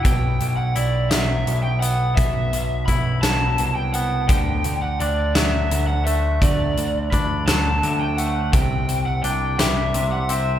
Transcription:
<<
  \new Staff \with { instrumentName = "Lead electric guitar" } { \time 6/8 \key b \phrygian \tempo 4. = 57 g''8. fis''16 d''8 e''8. g''16 fis''8 | e''4 b''8 a''8. g''16 fis''8 | g''8. fis''16 d''8 e''8. fis''16 e''8 | d''4 b''8 a''8. g''16 fis''8 |
g''8. fis''16 g''8 e''8. fis''16 e''8 | }
  \new Staff \with { instrumentName = "Clean electric guitar" } { \clef bass \time 6/8 \key b \phrygian b,4 e'8 fis8 b,8 b8 | b,4 e'8 fis8 b,8 b8 | d4 d'8 fis8 d8 a8 | d4 d'8 fis8 d8 a8 |
c4 d'8 g8 c8 c'8 | }
  \new Staff \with { instrumentName = "Picked electric bass" } { \clef bass \time 6/8 \key b \phrygian b,,8 b,,8 b,,8 b,,8 b,,4 | b,,8 b,,8 b,,8 b,,8 c,4 | d,8 d,8 d,8 d,8 d,4 | d,8 d,8 d,8 d,8 d,4 |
c,8 c,8 c,8 c,8 c,4 | }
  \new DrumStaff \with { instrumentName = "Drums" } \drummode { \time 6/8 <hh bd>8 hh8 hh8 <hh sn>8 hh8 hh8 | <hh bd>8 hh8 <hh bd>8 <hh sn>8 hh8 hh8 | <hh bd>8 hh8 hh8 <hh sn>8 hh8 hh8 | <hh bd>8 hh8 <hh bd>8 <hh sn>8 hh8 hh8 |
<hh bd>8 hh8 hh8 <hh sn>8 hh8 hh8 | }
>>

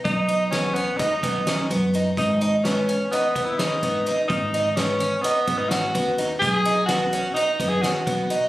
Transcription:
<<
  \new Staff \with { instrumentName = "Tenor saxophone" } { \time 9/8 \key gis \minor \tempo 4. = 85 dis'4 cis'8 b8 dis'4. r4 | dis'4 cis'4 b8. e'16 dis'4 r8 | dis'4 cis'4 b8. dis'16 fis'4 r8 | gis'4 fis'4 dis'8. gis'16 fis'4 r8 | }
  \new Staff \with { instrumentName = "Twelve-string acoustic guitar" } { \time 9/8 \key gis \minor r8 dis'8 b8 cis'8 dis'8 b8 cis'8 b8 dis'8 | r8 dis'8 b8 cis'8 dis'8 b8 cis'8 b8 dis'8 | r8 dis'8 b8 cis'8 dis'8 b8 cis'8 b8 dis'8 | r8 dis'8 b8 cis'8 dis'8 b8 cis'8 b8 dis'8 | }
  \new Staff \with { instrumentName = "Upright bass" } { \clef bass \time 9/8 \key gis \minor b,,2 r8 b,,4 fis,4 | gis,,2 r8 dis,8 r8 gis,,8 r8 | gis,,2 r8 gis,,4 dis,4 | b,,2 r8 fis,8 r8 b,,8 r8 | }
  \new DrumStaff \with { instrumentName = "Drums" } \drummode { \time 9/8 <hh bd>8 hh8 <hh sn>8 hh8 <hh bd>8 <hh bd sn>8 <hh sn>8 hh8 hh8 | <hh bd>8 hh8 <hh sn>8 hh8 <hh sn>8 <hh bd>8 <hh sn>8 <hh bd>8 <hh sn>8 | <hh bd>8 <hh sn>8 <hh sn>8 hh8 hh8 <hh bd>8 <hh sn>8 <hh bd>8 <hh sn>8 | <hh bd>8 hh8 <hh sn>8 hh8 hh8 <hh bd>8 <hh sn>8 <hh bd sn>8 hh8 | }
>>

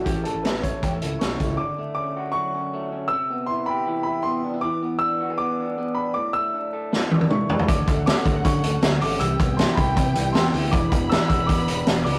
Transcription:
<<
  \new Staff \with { instrumentName = "Upright piano" } { \time 4/4 \key d \major \tempo 4 = 158 g'8 a'8 b'8 cis''4. cis'''4 | d'''4 d'''4 cis'''2 | e'''4 c'''8 b''4 b''8 c'''4 | d'''4 e'''4 d'''4. b''8 |
d'''8 e'''4 r4. cis'''4 | d'''4 d'''4 cis'''4. d'''8 | e'''4 c'''8 b''4. c'''4 | d'''4 e'''8 e'''8 d'''4. d'''8 | }
  \new Staff \with { instrumentName = "Violin section" } { \time 4/4 \key d \major r1 | r1 | r1 | r1 |
r1 | fis''1 | g''1 | b''1 | }
  \new Staff \with { instrumentName = "Clean electric guitar" } { \time 4/4 \key d \major <a, cis' e' a'>8 cis'8 a'8 e'8 g'16 a'16 e'8 cis'8 e'8 | d8 a8 cis'8 fis'8 fis8 cis'8 a8 cis'8 | c8 b8 e'8 g'8 e8 e'8 b8 d'16 e'16 | e8 b8 d'8 fis'16 gis'16 b8 d'8 b8 d'8 |
a,8 a8 d'8 a'8 e8 d'8 a8 d'8 | d8 a8 cis'8 fis'8 fis8 cis'8 a8 cis'8 | c8 b8 e'8 g'8 e8 d'16 e'16 b8 e'8 | e8 b8 d'8 fis'16 gis'16 b8 d'8 b8 d'8 | }
  \new Staff \with { instrumentName = "Steel-string acoustic guitar" } { \time 4/4 \key d \major <a, e a cis' e' a'>8 <a cis' e' a'>8 <a cis'>8 <a cis' e' a'>8 <a, e a cis' e' a'>8 <a cis' e' a'>8 <a cis' e' a'>8 <a cis' e' a'>8 | r1 | r1 | r1 |
r1 | <d fis a cis' a'>8 <a cis' a'>8 <d fis a cis' a'>8 <a cis' a'>8 <fis a cis' a'>8 <a cis' a'>8 <d fis a cis' a'>8 <a cis' a'>8 | <c e b e' g'>8 <b e' g'>8 <c e b e' g'>8 <b e' g'>8 <e b e' g'>8 <b e' g'>8 <c e b e' g'>8 <b e' g'>8 | <e b d' gis'>8 <b d' gis'>8 <e b d' gis'>8 <b d' gis'>8 <e b d' gis'>8 <b d' gis'>8 <e b d' gis'>8 <b d' gis'>8 | }
  \new Staff \with { instrumentName = "Fingered electric bass" } { \clef bass \time 4/4 \key d \major a,,8 r16 a,,4~ a,,16 e,8 cis,8 b,,8 cis,8 | r1 | r1 | r1 |
r1 | d,8 d,8. r16 d,8 d8 d,8 d,8 a,,8 | c,8 c,8. r16 c,8 c8 c,8 e,8 d,8 | e,,8 e,,8. r16 e,,8 e,8 e,,8 e,,8 cis,8 | }
  \new DrumStaff \with { instrumentName = "Drums" } \drummode { \time 4/4 <hh bd>8 hh8 <hh sn>8 <hh bd>8 <hh bd>8 hh8 <hh sn>8 <hh bd>8 | r4 r4 r4 r4 | r4 r4 r4 r4 | r4 r4 r4 r4 |
r4 r4 sn8 tommh16 tommh16 toml8 tomfh16 tomfh16 | <hh bd>8 <hh bd>8 <hh sn>8 <hh bd>8 <hh bd>8 hh8 <hh sn>8 hho8 | hh8 <hh bd>8 <hh sn>8 <hh bd>8 <hh bd>8 hh8 <hh sn>8 hho8 | <hh bd>8 <hh bd>8 <hh sn>8 <hh bd>8 <hh bd>8 hh8 <hh sn>8 hho8 | }
>>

